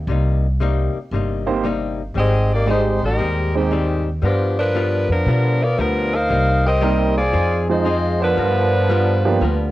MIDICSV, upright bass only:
0, 0, Header, 1, 3, 480
1, 0, Start_track
1, 0, Key_signature, -3, "minor"
1, 0, Tempo, 518135
1, 76, Time_signature, 4, 2, 24, 8
1, 8999, End_track
2, 0, Start_track
2, 0, Title_t, "Upright bass"
2, 0, Program_c, 0, 32
2, 67, Note_on_c, 0, 36, 86
2, 840, Note_off_c, 0, 36, 0
2, 1032, Note_on_c, 0, 31, 83
2, 1959, Note_off_c, 0, 31, 0
2, 1993, Note_on_c, 0, 32, 82
2, 2763, Note_off_c, 0, 32, 0
2, 2801, Note_on_c, 0, 33, 68
2, 2948, Note_off_c, 0, 33, 0
2, 2953, Note_on_c, 0, 39, 89
2, 3880, Note_off_c, 0, 39, 0
2, 3913, Note_on_c, 0, 43, 79
2, 4684, Note_off_c, 0, 43, 0
2, 4714, Note_on_c, 0, 41, 64
2, 4865, Note_off_c, 0, 41, 0
2, 4873, Note_on_c, 0, 47, 85
2, 5323, Note_off_c, 0, 47, 0
2, 5355, Note_on_c, 0, 38, 72
2, 5804, Note_off_c, 0, 38, 0
2, 5838, Note_on_c, 0, 36, 85
2, 6763, Note_off_c, 0, 36, 0
2, 6797, Note_on_c, 0, 41, 86
2, 7722, Note_off_c, 0, 41, 0
2, 7761, Note_on_c, 0, 43, 83
2, 8683, Note_off_c, 0, 43, 0
2, 8717, Note_on_c, 0, 38, 84
2, 8999, Note_off_c, 0, 38, 0
2, 8999, End_track
3, 0, Start_track
3, 0, Title_t, "Muted upright bass strokes"
3, 872, Note_on_c, 9, 29, 38
3, 964, Note_off_c, 9, 29, 0
3, 8999, End_track
0, 0, End_of_file